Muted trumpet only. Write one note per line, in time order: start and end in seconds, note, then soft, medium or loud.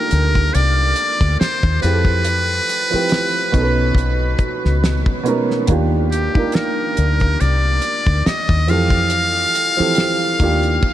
0.00 0.56 A#4 medium
0.54 1.39 D5 medium
1.40 1.80 C5 medium
1.82 5.21 B4 medium
6.11 6.56 G4 medium
6.55 7.42 A#4 medium
7.41 8.28 D5 medium
8.27 8.71 D#5 medium
8.70 10.93 F5 loud